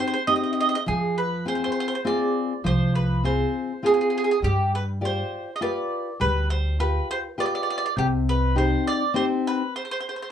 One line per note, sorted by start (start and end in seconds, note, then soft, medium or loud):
0.00 0.16 C4 soft
0.00 0.17 D#4 soft
0.00 0.17 G4 soft
0.08 0.12 C5 medium
0.14 0.23 C5 medium
0.27 0.75 C4 soft
0.27 0.75 D#4 soft
0.27 0.76 G4 soft
0.27 0.35 D#5 medium
0.36 0.42 D#5 medium
0.43 0.51 D#5 soft
0.53 0.59 D#5 soft
0.61 0.67 D#5 medium
0.69 0.74 D#5 medium
0.75 0.82 D#5 medium
0.86 1.64 F2 medium
0.86 1.44 F3 medium
0.86 1.15 G#4 medium
1.18 1.45 B4 medium
1.45 1.93 C4 soft
1.45 1.93 F4 soft
1.45 1.94 G#4 soft
1.45 1.54 C5 medium
1.55 1.62 C5 soft
1.64 1.70 C5 medium
1.72 1.78 C5 medium
1.80 1.86 C5 medium
1.88 1.94 C5 medium
1.95 2.01 C5 medium
2.05 2.52 C4 soft
2.05 2.53 F4 soft
2.05 2.53 G#4 soft
2.05 2.61 D5 medium
2.64 3.42 C2 medium
2.64 3.22 F3 medium
2.64 2.93 C5 medium
2.95 3.22 B4 medium
3.24 3.71 C4 soft
3.24 3.72 F4 soft
3.24 3.72 G#4 soft
3.24 3.86 C5 medium
3.83 4.31 C4 soft
3.83 4.31 F4 soft
3.83 4.31 G#4 soft
3.83 3.92 G#4 medium
3.94 4.00 G#4 soft
4.01 4.08 G#4 soft
4.10 4.16 G#4 soft
4.18 4.23 G#4 medium
4.24 4.30 G#4 medium
4.31 4.38 G#4 medium
4.42 5.20 G2 medium
4.42 5.00 G3 soft
4.42 4.72 G4 medium
4.75 4.83 B4 medium
5.01 5.49 F4 soft
5.01 5.49 G4 soft
5.01 5.49 D5 soft
5.05 5.52 C5 medium
5.56 5.62 D#5 soft
5.61 6.09 F4 soft
5.61 6.09 G4 soft
5.61 6.09 B4 soft
5.61 6.17 D5 medium
6.20 6.98 D2 medium
6.20 6.77 G3 soft
6.20 6.49 B4 medium
6.50 6.78 C5 medium
6.80 7.27 F4 soft
6.80 7.27 G4 soft
6.80 7.27 B4 soft
6.80 7.08 B4 medium
7.11 7.18 C5 medium
7.38 7.85 F4 soft
7.38 7.85 G4 soft
7.38 7.85 B4 medium
7.38 7.45 D5 medium
7.46 7.53 D5 medium
7.55 7.62 D5 soft
7.63 7.69 D5 soft
7.70 7.77 D5 medium
7.78 7.85 D5 medium
7.86 7.92 D5 medium
7.97 8.73 C2 medium
7.97 8.54 C3 medium
7.97 8.06 G4 medium
8.29 8.55 B4 medium
8.55 9.03 C4 soft
8.55 9.03 D#4 soft
8.55 9.03 G4 soft
8.55 8.85 C5 medium
8.87 9.14 D5 medium
9.14 9.61 C4 soft
9.14 9.62 D#4 soft
9.14 9.62 G4 soft
9.14 9.24 C5 medium
9.47 9.73 B4 medium
9.76 9.82 C5 medium
9.85 9.90 C5 soft
9.91 9.98 C5 medium
10.00 10.06 C5 soft
10.09 10.14 C5 soft
10.16 10.21 C5 soft
10.22 10.28 C5 soft